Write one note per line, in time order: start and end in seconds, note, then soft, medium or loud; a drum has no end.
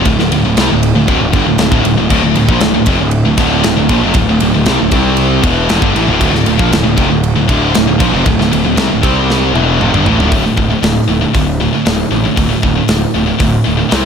0.05 0.18 D1 medium
0.05 0.18 D2 medium
0.05 0.19 A2 medium
0.05 kick loud
0.05 ride medium
0.19 0.31 D1 medium
0.19 0.31 D2 medium
0.19 0.31 A2 medium
0.19 snare soft
0.31 0.43 D1 medium
0.31 0.44 D2 medium
0.31 0.44 A2 medium
0.31 ride medium
0.45 0.56 D1 medium
0.45 0.57 D2 medium
0.45 0.58 A2 medium
0.57 0.69 C2 loud
0.57 0.69 C3 medium
0.57 0.70 G3 loud
0.57 snare loud
0.57 ride loud
0.71 0.94 D1 medium
0.71 0.91 D2 medium
0.71 0.91 A2 medium
0.83 ride medium
0.95 1.08 D1 medium
0.95 1.06 D2 medium
0.95 1.07 A2 medium
1.08 1.20 D1 medium
1.08 1.19 D2 medium
1.08 1.19 A2 loud
1.08 kick medium
1.08 ride medium
1.20 1.33 D1 medium
1.20 1.32 D2 medium
1.20 1.33 A2 medium
1.32 1.45 G1 medium
1.32 1.45 G2 loud
1.32 1.46 D3 medium
1.32 kick loud
1.32 ride medium
1.46 1.58 D1 medium
1.46 1.57 D2 medium
1.46 1.58 A2 medium
1.58 1.71 D1 medium
1.58 1.70 D2 medium
1.58 1.71 A2 medium
1.58 snare loud
1.58 ride medium
1.72 1.84 D1 loud
1.72 1.84 D2 medium
1.72 1.84 A2 medium
1.72 kick loud
1.84 1.97 D1 medium
1.84 1.96 D2 medium
1.84 1.97 A2 medium
1.84 ride medium
1.98 2.10 D1 medium
1.98 2.10 D2 medium
1.98 2.11 A2 medium
2.10 2.22 D1 loud
2.10 2.23 D2 medium
2.10 2.23 A2 medium
2.10 kick medium
2.10 crash medium
2.24 2.36 D1 medium
2.24 2.35 D2 medium
2.24 2.36 A2 medium
2.35 2.48 D1 medium
2.35 2.49 D2 medium
2.35 2.49 A2 medium
2.35 ride medium
2.49 2.61 A#1 medium
2.49 2.61 A#2 medium
2.49 2.62 F3 medium
2.49 kick loud
2.60 2.74 D1 medium
2.60 2.73 D2 medium
2.60 2.74 A2 medium
2.60 snare loud
2.60 ride medium
2.74 2.87 D1 medium
2.74 2.87 D2 medium
2.74 2.87 A2 medium
2.86 2.99 F1 medium
2.86 2.99 F2 medium
2.86 3.00 C3 medium
2.86 kick loud
2.86 ride medium
3.00 3.24 D1 medium
3.00 3.21 D2 medium
3.00 3.21 A2 medium
3.11 ride medium
3.25 3.37 D1 medium
3.25 3.36 D2 medium
3.25 3.37 A2 medium
3.37 3.62 D1 medium
3.37 3.62 D2 medium
3.37 3.62 A2 medium
3.37 3.64 D3 medium
3.37 kick loud
3.37 snare soft
3.37 ride medium
3.63 3.76 D1 medium
3.63 3.75 D2 medium
3.63 3.76 A2 medium
3.63 snare loud
3.63 ride medium
3.76 3.89 D1 medium
3.76 3.90 D2 medium
3.76 3.90 A2 medium
3.89 4.02 A#1 medium
3.89 4.02 A#2 medium
3.89 4.02 F3 loud
3.89 kick loud
3.89 ride medium
4.02 4.14 F1 loud
4.02 4.14 F2 loud
4.02 4.15 C3 loud
4.14 4.27 D1 medium
4.14 4.28 D2 medium
4.14 4.28 A2 medium
4.14 kick loud
4.14 ride loud
4.28 4.40 D1 medium
4.28 4.41 D2 medium
4.28 4.41 A2 medium
4.40 4.53 D1 medium
4.40 4.53 D2 medium
4.40 4.53 A2 medium
4.40 ride medium
4.54 4.66 D1 medium
4.54 4.66 D2 medium
4.54 4.67 A2 medium
4.66 4.79 C2 loud
4.66 4.79 C3 loud
4.66 4.79 G3 loud
4.66 snare loud
4.66 ride medium
4.79 4.91 D1 medium
4.79 4.91 D2 medium
4.79 4.92 A2 medium
4.91 5.40 C2 medium
4.91 5.42 C3 medium
4.91 5.43 G3 loud
4.91 5.43 C4 loud
4.91 kick loud
4.91 ride medium
5.17 ride medium
5.43 5.67 E1 medium
5.43 5.68 E2 loud
5.43 5.69 B2 loud
5.43 5.69 E3 loud
5.43 kick loud
5.43 ride medium
5.69 5.81 F1 loud
5.69 5.80 F2 medium
5.69 5.81 C3 loud
5.69 snare loud
5.69 ride loud
5.80 5.94 G1 medium
5.80 5.93 G2 medium
5.80 5.94 D3 loud
5.80 kick loud
5.94 6.08 A1 medium
5.94 6.06 A2 medium
5.94 6.07 E3 loud
5.94 ride medium
6.07 6.20 D1 loud
6.07 6.19 D2 medium
6.07 6.20 A2 loud
6.20 6.32 D1 loud
6.20 6.32 D2 medium
6.20 6.33 A2 loud
6.20 kick loud
6.20 crash loud
6.33 6.45 D1 medium
6.33 6.45 D2 medium
6.33 6.45 A2 medium
6.33 snare soft
6.46 6.58 D1 medium
6.46 6.57 D2 medium
6.46 6.58 A2 medium
6.46 ride medium
6.58 6.71 A#1 medium
6.58 6.70 A#2 medium
6.58 6.71 F3 medium
6.58 kick loud
6.71 6.84 D1 medium
6.71 6.83 D2 medium
6.71 6.83 A2 medium
6.71 snare loud
6.71 ride medium
6.84 6.97 D1 medium
6.84 6.96 D2 medium
6.84 6.97 A2 medium
6.96 7.10 F1 medium
6.96 7.09 F2 medium
6.96 7.10 C3 loud
6.96 kick loud
6.96 ride medium
7.10 7.34 D1 medium
7.10 7.31 D2 medium
7.10 7.31 A2 medium
7.23 ride medium
7.36 7.48 D1 medium
7.36 7.47 D2 medium
7.36 7.48 A2 medium
7.48 7.73 D1 medium
7.48 7.73 D2 medium
7.48 7.73 A2 medium
7.48 7.74 D3 loud
7.48 kick loud
7.48 ride medium
7.74 7.87 D1 medium
7.74 7.86 D2 medium
7.74 7.87 A2 medium
7.74 snare loud
7.74 ride medium
7.87 8.00 D1 medium
7.87 7.99 D2 medium
7.87 8.00 A2 medium
7.99 8.12 A#1 medium
7.99 8.12 A#2 loud
7.99 8.12 F3 loud
7.99 kick loud
7.99 ride medium
8.12 8.25 F1 medium
8.12 8.25 F2 loud
8.12 8.25 C3 loud
8.25 8.38 D1 medium
8.25 8.38 D2 medium
8.25 8.39 A2 medium
8.25 kick loud
8.25 ride medium
8.39 8.51 D1 medium
8.39 8.50 D2 medium
8.39 8.51 A2 medium
8.39 snare soft
8.52 8.64 D1 medium
8.52 8.63 D2 medium
8.52 8.64 A2 medium
8.52 ride medium
8.64 8.77 D1 medium
8.64 8.76 D2 medium
8.64 8.77 A2 medium
8.76 8.89 C2 medium
8.76 8.89 C3 medium
8.76 8.89 G3 loud
8.76 snare loud
8.76 ride medium
8.90 9.02 D1 medium
8.90 9.01 D2 medium
8.90 9.02 A2 medium
9.02 9.51 C2 medium
9.02 9.53 C3 medium
9.02 9.53 G3 medium
9.02 9.54 C4 medium
9.02 kick loud
9.02 ride medium
9.30 snare medium
9.54 9.78 E1 loud
9.54 9.79 E2 medium
9.54 9.79 B2 loud
9.54 9.80 E3 medium
9.54 high tom medium
9.79 9.92 F1 loud
9.79 9.92 F2 medium
9.79 9.92 C3 loud
9.79 mid tom medium
9.93 10.05 G1 medium
9.93 10.05 G2 medium
9.93 10.05 D3 loud
9.93 mid tom medium
10.06 10.18 A1 medium
10.06 10.17 A2 medium
10.06 10.18 E3 loud
10.06 floor tom loud
10.18 10.31 D1 loud
10.18 10.30 D2 loud
10.18 10.30 A2 loud
10.18 floor tom loud
10.31 10.48 D1 loud
10.31 10.43 D2 medium
10.31 10.43 A2 medium
10.31 10.43 D3 medium
10.31 kick loud
10.31 open hi-hat medium
10.44 10.56 D2 medium
10.44 10.55 A2 medium
10.57 10.74 D1 medium
10.57 10.70 D2 medium
10.57 10.69 A2 medium
10.57 kick medium
10.70 10.81 D2 medium
10.70 10.82 A2 medium
10.82 10.99 D1 medium
10.82 11.06 D2 medium
10.82 11.06 A2 medium
10.82 snare loud
10.82 open hi-hat medium
11.08 11.25 D1 medium
11.08 11.21 D2 medium
11.08 11.20 A2 medium
11.21 11.32 D2 medium
11.21 11.32 A2 medium
11.33 11.67 D1 medium
11.33 11.57 D2 medium
11.33 11.57 A2 medium
11.33 kick loud
11.33 open hi-hat soft
11.60 11.72 D2 medium
11.60 11.72 A2 medium
11.73 11.84 D2 medium
11.73 11.84 A2 medium
11.85 12.03 D1 medium
11.85 12.09 D2 medium
11.85 12.09 A2 medium
11.85 snare loud
11.85 open hi-hat medium
12.11 12.28 A1 medium
12.11 12.23 D2 medium
12.11 12.23 A2 medium
12.24 12.35 D2 medium
12.24 12.35 A2 medium
12.36 12.54 D1 medium
12.36 12.49 D2 medium
12.36 12.48 A2 medium
12.36 kick medium
12.36 open hi-hat soft
12.49 12.62 D2 medium
12.49 12.61 A2 medium
12.62 12.80 D1 medium
12.62 12.74 D2 medium
12.62 12.74 A2 medium
12.62 kick medium
12.76 12.88 D2 medium
12.76 12.88 A2 medium
12.88 13.05 D1 medium
12.88 13.12 D2 medium
12.88 13.12 A2 medium
12.88 snare loud
12.88 open hi-hat medium
13.14 13.31 D1 medium
13.14 13.25 D2 medium
13.14 13.25 A2 medium
13.26 13.37 D2 medium
13.26 13.38 A2 medium
13.38 13.57 D1 medium
13.38 13.63 D2 medium
13.38 13.63 A2 medium
13.38 kick loud
13.38 open hi-hat medium
13.64 13.83 D1 medium
13.64 13.76 D2 medium
13.64 13.76 A2 medium
13.77 13.88 D2 medium
13.77 13.89 A2 medium
13.89 14.05 C2 medium
13.89 14.05 C3 medium
13.89 14.05 G3 medium
13.89 14.05 C4 medium
13.89 snare loud
13.89 open hi-hat medium